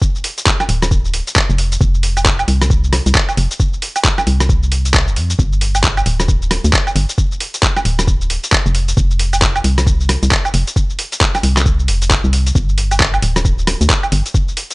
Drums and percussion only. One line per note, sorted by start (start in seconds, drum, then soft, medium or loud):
0.02 kick loud
0.02 shaker medium
0.15 shaker soft
0.24 open hi-hat loud
0.38 closed hi-hat medium
0.38 shaker medium
0.46 kick loud
0.46 clap loud
0.46 shaker medium
0.60 cross-stick soft
0.60 high woodblock medium
0.60 shaker soft
0.69 open hi-hat loud
0.82 cross-stick medium
0.82 closed hi-hat medium
0.82 shaker medium
0.91 kick loud
0.91 shaker medium
1.05 shaker soft
1.14 open hi-hat loud
1.27 closed hi-hat medium
1.27 shaker medium
1.36 kick loud
1.36 clap loud
1.36 closed hi-hat medium
1.36 shaker soft
1.50 shaker soft
1.58 open hi-hat loud
1.72 closed hi-hat medium
1.72 shaker medium
1.81 kick loud
1.81 shaker medium
1.94 shaker soft
2.03 open hi-hat loud
2.17 closed hi-hat medium
2.17 high woodblock medium
2.17 shaker medium
2.25 kick loud
2.25 clap loud
2.25 shaker medium
2.39 high woodblock medium
2.39 shaker soft
2.48 open hi-hat loud
2.62 cross-stick medium
2.62 closed hi-hat medium
2.62 shaker medium
2.70 kick loud
2.70 shaker medium
2.84 shaker soft
2.93 cross-stick medium
2.93 open hi-hat loud
3.06 closed hi-hat medium
3.06 shaker medium
3.15 kick loud
3.15 clap loud
3.15 closed hi-hat soft
3.15 shaker medium
3.29 high woodblock medium
3.29 shaker soft
3.37 open hi-hat loud
3.51 closed hi-hat medium
3.51 shaker medium
3.60 kick loud
3.60 shaker medium
3.73 shaker soft
3.82 open hi-hat loud
3.96 closed hi-hat medium
3.96 high woodblock medium
3.96 shaker medium
4.04 kick loud
4.04 clap loud
4.04 shaker medium
4.18 cross-stick soft
4.18 high woodblock medium
4.18 shaker soft
4.27 open hi-hat loud
4.40 cross-stick medium
4.40 closed hi-hat medium
4.40 shaker medium
4.49 kick loud
4.49 shaker medium
4.63 shaker soft
4.72 open hi-hat loud
4.85 closed hi-hat medium
4.85 shaker medium
4.94 kick loud
4.94 clap loud
4.94 closed hi-hat medium
4.94 shaker medium
5.08 shaker soft
5.16 open hi-hat medium
5.30 closed hi-hat medium
5.30 shaker medium
5.39 kick loud
5.39 shaker medium
5.53 shaker soft
5.61 open hi-hat loud
5.75 closed hi-hat medium
5.75 high woodblock medium
5.75 shaker medium
5.84 kick loud
5.84 clap loud
5.84 shaker medium
5.97 high woodblock medium
5.97 shaker soft
6.06 open hi-hat loud
6.20 cross-stick medium
6.20 closed hi-hat medium
6.20 shaker medium
6.28 kick loud
6.28 shaker medium
6.42 shaker soft
6.51 cross-stick medium
6.51 open hi-hat loud
6.64 closed hi-hat medium
6.64 shaker medium
6.73 kick loud
6.73 clap loud
6.73 closed hi-hat medium
6.73 shaker medium
6.87 high woodblock medium
6.87 shaker soft
6.96 open hi-hat loud
7.09 closed hi-hat medium
7.09 shaker medium
7.18 kick loud
7.18 shaker medium
7.32 shaker soft
7.40 open hi-hat loud
7.54 closed hi-hat medium
7.54 shaker medium
7.63 kick loud
7.63 clap loud
7.63 shaker medium
7.76 cross-stick soft
7.76 high woodblock medium
7.76 shaker soft
7.85 open hi-hat loud
7.99 cross-stick medium
7.99 closed hi-hat medium
7.99 shaker medium
8.07 kick loud
8.07 shaker medium
8.21 shaker soft
8.30 open hi-hat loud
8.44 closed hi-hat medium
8.44 shaker medium
8.52 kick loud
8.52 clap loud
8.52 closed hi-hat medium
8.52 shaker medium
8.66 shaker soft
8.75 open hi-hat loud
8.88 closed hi-hat medium
8.88 shaker medium
8.97 kick loud
8.97 shaker medium
9.11 shaker soft
9.19 open hi-hat loud
9.33 closed hi-hat medium
9.33 high woodblock medium
9.33 shaker medium
9.42 kick loud
9.42 clap loud
9.42 shaker medium
9.56 high woodblock medium
9.56 shaker soft
9.64 open hi-hat loud
9.78 cross-stick medium
9.78 closed hi-hat medium
9.78 shaker medium
9.87 kick loud
9.87 shaker medium
10.00 shaker soft
10.09 cross-stick medium
10.09 open hi-hat loud
10.23 closed hi-hat medium
10.23 shaker medium
10.31 kick loud
10.31 clap loud
10.31 closed hi-hat medium
10.31 shaker medium
10.45 high woodblock medium
10.45 shaker soft
10.54 open hi-hat loud
10.67 closed hi-hat medium
10.67 shaker medium
10.76 kick loud
10.76 shaker medium
10.90 shaker soft
10.99 open hi-hat loud
11.12 closed hi-hat medium
11.12 shaker medium
11.21 kick loud
11.21 clap loud
11.21 shaker soft
11.35 cross-stick soft
11.35 closed hi-hat soft
11.35 high woodblock medium
11.35 shaker soft
11.43 open hi-hat loud
11.57 cross-stick medium
11.57 clap medium
11.57 closed hi-hat medium
11.57 shaker medium
11.66 kick loud
11.66 shaker medium
11.79 shaker soft
11.88 open hi-hat loud
12.02 closed hi-hat medium
12.02 shaker medium
12.10 kick loud
12.10 clap loud
12.10 closed hi-hat medium
12.10 shaker medium
12.24 shaker soft
12.33 open hi-hat loud
12.47 closed hi-hat medium
12.47 shaker medium
12.55 kick loud
12.55 shaker medium
12.69 shaker soft
12.78 open hi-hat loud
12.91 closed hi-hat medium
12.91 high woodblock medium
12.91 shaker medium
13.00 kick loud
13.00 clap loud
13.00 shaker medium
13.14 high woodblock medium
13.14 shaker soft
13.22 open hi-hat loud
13.36 cross-stick medium
13.36 closed hi-hat medium
13.36 shaker medium
13.45 kick loud
13.45 shaker soft
13.59 shaker soft
13.67 cross-stick medium
13.67 open hi-hat loud
13.81 closed hi-hat medium
13.81 shaker medium
13.90 kick loud
13.90 clap loud
13.90 closed hi-hat medium
13.90 shaker soft
14.03 high woodblock medium
14.03 shaker soft
14.12 open hi-hat loud
14.26 closed hi-hat medium
14.26 shaker medium
14.34 kick loud
14.34 shaker medium
14.48 shaker soft
14.57 open hi-hat loud
14.71 closed hi-hat medium
14.71 shaker medium